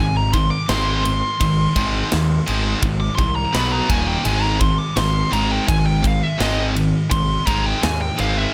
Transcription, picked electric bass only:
0.00 0.50 G#1 medium
0.69 1.21 G#1 loud
1.41 1.66 G#1 loud
1.76 2.02 G#1 medium
2.13 2.39 D#2 medium
2.48 2.74 G#1 loud
2.83 3.08 G#1 loud
3.19 3.44 C2 medium
3.54 3.80 B1 medium
3.89 4.15 D#1 medium
4.26 4.77 G#1 loud
4.97 5.23 G#1 loud
5.32 5.58 G#1 medium
5.69 6.20 G#1 loud
6.40 6.92 G#1 medium
7.11 7.37 G#1 loud
7.47 7.73 G#1 medium
7.84 8.09 D#2 medium
8.19 8.45 G#1 medium

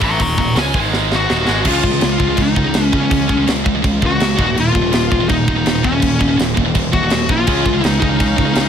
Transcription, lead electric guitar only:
0.04 0.20 A#5 medium
0.04 0.21 C#6 medium
0.22 0.37 A#5 medium
0.22 0.38 C#6 medium
0.39 0.55 A#5 medium
0.39 0.56 C#6 medium
0.59 0.75 G#5 loud
1.16 1.68 F#4 loud
1.68 2.42 F4 medium
2.42 2.85 D#4 loud
2.85 2.95 C#4 loud
2.95 3.45 C#4 medium
4.06 4.55 F#4 loud
4.60 5.29 F4 loud
5.29 5.85 D#4 medium
5.85 6.35 C#4 medium
6.93 7.27 F#4 loud
7.31 7.86 F4 loud
7.86 7.99 D#4 loud
8.00 8.69 D#4 medium

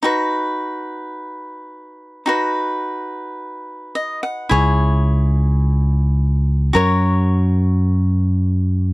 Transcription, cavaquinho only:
0.03 2.23 D#4 medium
0.03 2.24 F#4 medium
0.03 2.24 B4 medium
2.26 4.46 D#4 medium
2.26 4.47 F#4 medium
2.26 4.48 B4 medium
3.95 4.21 D#5 medium
4.23 4.49 F#5 medium
4.49 6.70 E4 medium
4.49 6.70 G#4 medium
4.49 6.71 C#5 medium
6.73 8.93 F#4 medium
6.73 8.93 A#4 medium
6.73 8.93 C#5 medium

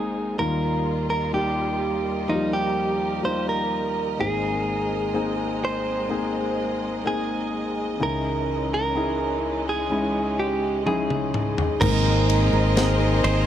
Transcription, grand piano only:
0.00 0.35 G#1 soft
0.00 0.35 G#2 soft
0.00 0.40 G#3 medium
0.00 0.39 A#3 medium
0.00 0.41 C4 medium
0.00 0.39 D#4 medium
0.38 4.16 D#2 soft
0.38 4.16 D#3 soft
0.38 1.29 G3 medium
0.38 1.29 A#3 soft
0.38 1.29 D#4 soft
0.38 1.30 F4 medium
1.33 2.24 G3 medium
1.33 2.24 A#3 soft
1.33 2.24 D#4 soft
1.33 2.25 G4 medium
2.29 2.35 F3 soft
2.29 3.19 A#3 soft
2.29 3.20 D#4 medium
2.29 3.20 F4 medium
2.35 3.22 G3 medium
3.23 4.14 G3 medium
3.23 4.15 A#3 soft
3.23 4.15 D#4 medium
3.23 4.15 F4 medium
4.19 7.96 G#1 soft
4.19 7.96 G#2 soft
4.19 5.10 A#3 medium
4.19 5.10 C4 soft
4.19 5.10 D#4 soft
4.19 5.10 G#4 medium
5.14 6.05 A#3 medium
5.14 6.05 C4 medium
5.14 6.05 D#4 soft
5.14 6.05 G#4 medium
6.09 7.00 A#3 medium
6.09 7.00 C4 medium
6.09 7.00 D#4 soft
6.09 7.01 G#4 medium
7.04 7.95 A#3 medium
7.04 7.96 C4 soft
7.04 7.96 D#4 soft
7.04 7.96 G#4 medium
8.00 11.77 C#2 soft
8.00 11.78 C#3 soft
8.00 8.91 C#4 medium
8.00 8.91 D#4 soft
8.00 8.91 E4 soft
8.00 8.91 G#4 medium
8.95 9.86 C#4 medium
8.95 9.86 D#4 soft
8.95 9.86 E4 medium
8.95 9.87 G#4 medium
9.90 10.82 G#3 medium
9.90 10.81 C#4 medium
9.90 10.81 D#4 medium
9.90 10.82 E4 medium
10.86 11.77 C#4 medium
10.86 11.77 D#4 medium
10.86 11.77 E4 medium
10.86 11.77 G#4 medium
11.81 13.20 G#2 medium
11.81 12.72 A#3 medium
11.81 12.72 C4 medium
11.81 12.72 D#4 medium
11.81 12.72 G#4 medium
11.81 12.72 A#4 medium
12.76 13.46 A#3 medium
12.76 13.46 C4 medium
12.76 13.46 D#4 medium
12.76 13.46 G#4 medium
12.76 13.46 A#4 medium

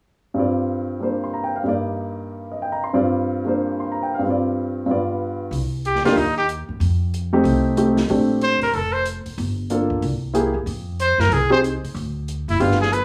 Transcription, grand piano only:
0.34 1.62 G2 soft
0.34 0.99 G3 soft
0.34 1.65 C4 soft
0.34 1.66 F4 soft
0.40 1.67 D5 soft
1.00 1.63 G3 soft
1.00 1.65 A#3 soft
1.00 1.66 D4 soft
1.00 1.67 C5 soft
1.24 1.39 C6 soft
1.34 1.52 A#5 soft
1.44 1.60 G5 soft
1.56 1.72 F5 soft
1.64 2.92 G2 soft
1.64 2.92 G3 soft
1.64 2.95 A#3 soft
1.68 2.95 D#4 soft
1.68 2.93 D5 soft
2.52 2.68 D#5 soft
2.62 2.81 G5 soft
2.72 2.89 A#5 soft
2.84 3.00 C6 soft
2.93 4.18 G2 soft
2.93 3.43 G3 soft
2.93 4.23 C4 soft
2.93 4.23 F4 soft
2.93 4.23 D5 medium
3.45 4.20 G3 soft
3.45 4.23 A#3 soft
3.45 4.23 D4 soft
3.45 4.24 C5 soft
3.80 3.96 C6 soft
3.92 4.10 A#5 soft
4.03 4.19 G5 soft
4.14 4.30 F5 soft
4.19 4.84 G2 soft
4.19 4.86 G3 soft
4.25 4.88 C4 soft
4.25 4.88 F4 soft
4.30 4.90 D5 soft
4.86 5.51 G2 soft
4.86 5.52 G3 soft
4.86 5.53 B3 soft
4.86 5.53 F4 soft
4.91 5.54 D5 soft
6.05 6.15 A#3 medium
6.05 6.16 D4 soft
6.05 6.16 D#4 soft
6.05 6.16 G4 medium
7.33 7.75 A3 medium
7.33 7.75 C4 medium
7.33 7.75 D#4 medium
7.33 7.75 G4 medium
7.77 7.95 A3 soft
7.77 7.96 C4 soft
7.77 7.96 D#4 soft
7.77 7.96 G4 medium
8.10 8.58 A3 soft
8.10 8.58 C4 soft
8.10 8.58 D4 soft
8.10 8.58 G4 medium
9.70 10.02 A#3 soft
9.70 10.03 D4 soft
9.70 10.03 F4 soft
9.70 10.03 A4 medium
10.34 10.52 A#3 soft
10.34 10.52 E4 soft
10.34 10.53 G4 soft
10.34 10.53 G#4 medium
11.50 11.62 C4 medium
11.50 11.62 D#4 soft
11.50 11.62 G4 medium
11.50 11.62 G#4 medium
12.60 12.78 B3 soft
12.60 12.78 D4 soft
12.60 12.78 F4 soft
12.60 12.78 G4 medium

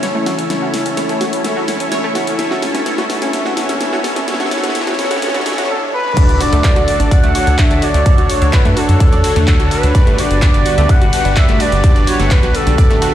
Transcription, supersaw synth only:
0.00 0.48 C#4 medium
0.00 0.48 E4 medium
0.00 0.48 A4 medium
0.00 0.48 C#5 medium
0.50 1.43 C#4 medium
0.50 1.43 E4 medium
0.50 1.43 A4 medium
0.50 1.43 C#5 loud
1.44 2.37 C#4 medium
1.44 2.37 E4 medium
1.44 2.37 A4 medium
1.44 2.37 C#5 loud
2.39 2.84 C#4 medium
2.39 2.84 E4 medium
2.39 2.84 A4 medium
2.39 2.84 C#5 loud
2.86 3.32 C#4 medium
2.86 3.32 E4 medium
2.86 3.32 A4 medium
2.86 3.32 C#5 loud
3.33 3.79 C#4 medium
3.33 3.79 E4 medium
3.33 3.79 A4 medium
3.33 3.79 C#5 loud
3.81 4.26 C#4 medium
3.81 4.26 E4 medium
3.81 4.26 A4 medium
3.81 4.26 C#5 loud
4.28 4.50 C#4 medium
4.28 4.50 E4 medium
4.28 4.50 A4 medium
4.28 4.50 C#5 loud
4.51 4.73 C#4 loud
4.51 4.73 E4 medium
4.51 4.73 A4 medium
4.51 4.73 C#5 loud
4.75 4.97 C#4 medium
4.75 4.97 E4 medium
4.75 4.97 A4 medium
4.75 4.97 C#5 loud
4.99 5.21 C#4 loud
4.99 5.21 E4 medium
4.99 5.21 A4 medium
4.99 5.21 C#5 loud
5.22 5.44 C#4 loud
5.22 5.44 E4 medium
5.22 5.44 A4 medium
5.22 5.44 C#5 loud
5.46 5.68 C#4 medium
5.46 5.68 E4 medium
5.46 5.68 A4 medium
5.46 5.68 C#5 loud
6.17 7.32 D4 medium
6.17 7.32 F#4 medium
6.17 7.32 A4 medium
6.17 7.32 D5 loud
7.35 8.03 D4 loud
7.35 8.03 F#4 medium
7.35 8.03 A4 medium
7.35 8.03 C#5 loud
8.06 9.21 D4 medium
8.06 9.21 F#4 medium
8.06 9.21 A4 medium
8.06 9.21 C#5 loud
9.24 9.92 D4 medium
9.24 9.92 F#4 medium
9.24 9.92 A4 medium
9.24 9.92 C#5 loud
9.95 11.10 D4 medium
9.95 11.10 F#4 medium
9.95 11.10 G4 medium
9.95 11.10 B4 loud
11.13 11.81 D4 medium
11.13 11.81 F#4 medium
11.13 11.81 G4 medium
11.13 11.81 B4 loud
11.84 12.99 D4 medium
11.84 12.99 F#4 medium
11.84 12.99 G4 medium
11.84 12.99 B4 loud
13.02 13.14 D4 loud
13.02 13.14 F#4 medium
13.02 13.14 G4 medium
13.02 13.14 B4 loud

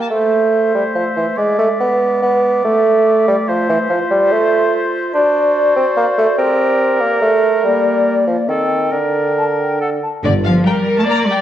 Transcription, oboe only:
0.12 1.39 C5 soft
1.38 3.50 D5 soft
3.48 5.14 C5 medium
5.15 6.37 C5 medium
6.39 8.16 A#4 medium
8.48 8.93 A4 soft
8.92 9.80 A#4 soft
9.80 9.90 A4 soft

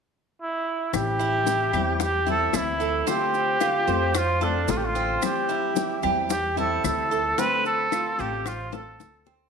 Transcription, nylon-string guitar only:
0.93 1.45 E3 medium
0.93 1.46 G3 medium
0.93 1.46 C4 medium
0.93 1.46 E4 medium
1.46 1.72 E3 soft
1.46 1.73 G3 medium
1.46 1.73 C4 soft
1.46 1.72 E4 medium
1.73 1.99 G3 medium
1.73 1.99 C4 medium
1.73 1.99 E4 medium
2.00 muted nylon-string guitar stroke medium
2.27 2.53 G3 medium
2.27 2.53 C4 medium
2.27 2.52 E4 medium
2.53 3.06 E3 medium
2.53 3.06 G3 medium
2.53 3.07 C4 medium
3.07 3.59 D3 medium
3.07 3.60 A3 medium
3.07 3.60 C4 medium
3.07 3.60 F4 medium
3.60 3.86 D3 soft
3.60 3.87 A3 soft
3.60 3.87 C4 soft
3.60 3.86 F4 medium
3.87 4.14 A3 medium
3.87 4.14 C4 medium
3.87 4.13 F4 medium
4.15 muted nylon-string guitar stroke medium
4.41 4.68 A3 soft
4.41 4.68 C4 medium
4.41 4.67 F4 medium
4.68 5.21 D3 medium
4.68 5.21 A3 soft
4.68 5.22 C4 medium
4.68 5.22 F4 medium
5.22 5.74 E3 medium
5.22 5.75 G3 medium
5.22 5.75 C4 medium
5.22 5.76 E4 medium
5.75 6.02 E3 soft
5.75 6.02 G3 medium
5.75 6.03 C4 medium
5.75 6.01 E4 medium
6.03 6.29 G3 medium
6.03 6.29 C4 medium
6.03 6.29 E4 medium
6.30 muted nylon-string guitar stroke medium
6.56 6.83 G3 soft
6.56 6.83 C4 medium
6.56 6.83 E4 medium
6.84 7.37 E3 soft
6.84 7.37 G3 soft
6.84 7.37 C4 soft
6.84 7.38 E4 medium
7.37 7.90 D3 medium
7.37 7.91 A3 medium
7.37 7.91 C4 medium
7.37 7.92 F4 medium
7.91 8.18 D3 soft
7.91 8.18 A3 medium
7.91 8.18 C4 soft
7.91 8.17 F4 medium
8.18 8.44 A3 medium
8.18 8.45 C4 medium
8.18 8.44 F4 medium
8.45 muted nylon-string guitar stroke medium
8.72 8.98 A3 medium
8.72 8.99 C4 medium
8.72 8.98 F4 medium
8.99 9.49 D3 soft
8.99 9.49 A3 medium
8.99 9.49 C4 soft
8.99 9.49 F4 medium

